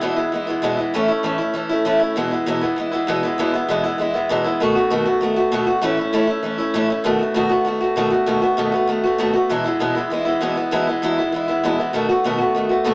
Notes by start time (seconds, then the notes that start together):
0.01 E2 B2 E3 G#3 B3 E4
0.16 E3 G#3 B3 E4
0.32 E3 G#3 B3 E4
0.47 E3 G#3 B3 E4
0.62 E2 B2 E3 G#3 B3 E4
0.77 E3 G#3 B3 E4
0.94 A2 E3 A3 C#4 E4
1.08 A3 C#4 E4
1.23 A2 E3 A3 C#4 E4
1.38 A3 C#4 E4
1.54 E3 A3 C#4 E4
1.69 A3 C#4 E4
1.85 A2 E3 A3 C#4 E4
2.00 A3 C#4 E4
2.16 E2 B2 E3 G#3 B3 E4
2.31 E3 G#3 B3 E4
2.46 E2 B2 E3 G#3 B3 E4
2.61 E3 G#3 B3 E4
2.76 E3 G#3 B3 E4
2.92 E3 G#3 B3 E4
3.07 E2 B2 E3 G#3 B3 E4
3.23 E3 G#3 B3 E4
3.38 E2 B2 E3 G#3 B3 E4
3.54 E3 G#3 B3 E4
3.69 E2 B2 E3 G#3 B3 E4
3.84 E3 G#3 B3 E4
3.98 E3 G#3 B3 E4
4.14 E3 G#3 B3 E4
4.29 E2 B2 E3 G#3 B3 E4
4.44 E3 G#3 B3 E4
4.60 B2 D#3 A3 B3 F#4
4.75 A3 B3 F#4
4.90 B2 D#3 A3 B3 F#4
5.06 A3 B3 F#4
5.21 D#3 A3 B3 F#4
5.36 A3 B3 F#4
5.52 B2 D#3 A3 B3 F#4
5.67 A3 B3 F#4
5.82 A2 E3 A3 C#4 E4
5.97 A3 C#4 E4
6.13 A2 E3 A3 C#4 E4
6.27 A3 C#4 E4
6.43 E3 A3 C#4 E4
6.58 A3 C#4 E4
6.74 A2 E3 A3 C#4 E4
6.88 A3 C#4 E4
7.04 B2 D#3 A3 B3 F#4
7.19 A3 B3 F#4
7.34 B2 D#3 A3 B3 F#4
7.49 A3 B3 F#4
7.65 D#3 A3 B3 F#4
7.81 A3 B3 F#4
7.96 B2 D#3 A3 B3 F#4
8.10 A3 B3 F#4
8.26 B2 D#3 A3 B3 F#4
8.42 A3 B3 F#4
8.57 B2 D#3 A3 B3 F#4
8.72 A3 B3 F#4
8.87 D#3 A3 B3 F#4
9.04 A3 B3 F#4
9.18 B2 D#3 A3 B3 F#4
9.33 A3 B3 F#4
9.49 E2 B2 E3 G#3 B3 E4
9.64 E3 G#3 B3 E4
9.80 E2 B2 E3 G#3 B3 E4
9.95 G#3 B3 E4
9.99 E3
10.10 E3 G#3 B3 E4
10.25 E3 G#3 B3 E4
10.41 E2 B2 E3 G#3 B3 E4
10.56 E3 G#3 B3 E4
10.71 E2 B2 E3 G#3 B3 E4
10.87 E3 G#3 B3 E4
11.02 E2 B2 E3 G#3 B3 E4
11.18 E3 G#3 B3 E4
11.32 E3 G#3 B3 E4
11.48 E3 G#3 B3 E4
11.63 E2 B2 E3 G#3 B3 E4
11.78 E3 G#3 B3 E4
11.93 B2 D#3 A3 B3 F#4
12.09 A3 B3 F#4
12.24 B2 D#3 A3 B3 F#4
12.38 A3 B3 F#4
12.55 D#3 A3 B3 F#4
12.69 A3 B3 F#4
12.84 B2 D#3 A3 B3 F#4